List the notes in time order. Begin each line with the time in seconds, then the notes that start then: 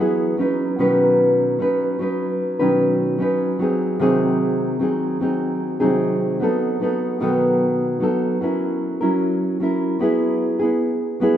Already playing: F#3
0.00 B3 E4 G#4
0.37 F#3 C#4 D#4 B4
0.78 B2 D#3 F#3 C#4 D#4 B4
1.59 F#3 C#4 D#4 B4
1.99 F#3 C#4 D#4 B4
2.59 B2 D#3 F#3 C#4 D#4 B4
3.18 F#3 C#4 D#4 B4
3.59 F#3 C4 D#4 G#4
3.99 C3 D#3 F#3 C4 D#4 G#4
4.79 F#3 C4 D#4 G#4
5.20 F#3 C4 D#4 G#4
5.80 C3 D#3 F#3 C4 D#4 G#4
6.40 F#3 B3 D#4 A4
6.80 F#3 B3 D#4 A4
7.20 B2 D#3 F#3 B3 D#4 A4
8.00 F#3 B3 D#4 A4
8.41 F#3 C#4 E4 A#4
9.01 F#3 C#4 E4 A#4
9.60 F#3 C#4 E4 A#4
9.99 F#3 B3 E4 G#4
10.59 B3 E4 G#4
11.20 F#3 B3 E4 G#4